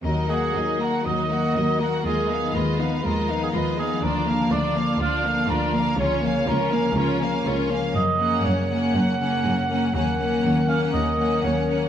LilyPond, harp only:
\new Staff \with { instrumentName = "Harp" } { \clef bass \time 4/4 \key ees \minor \tempo 4 = 122 ees8 ges8 bes'8 ees'8 ees8 ges8 bes'8 ees'8 | ees8 ees'8 f'8 f8 ees8 ees'8 f'8 f8 | d8 d'8 f'8 f8 d8 d'8 f'8 f8 | des8 f8 bes'8 des'8 des8 f8 bes'8 des'8 |
\key fis \major fis,8 cis8 cis'8 fis8 fis,8 cis8 cis'8 fis8 | dis8 fis8 ais'8 cis'8 dis8 fis8 ais'8 cis'8 | }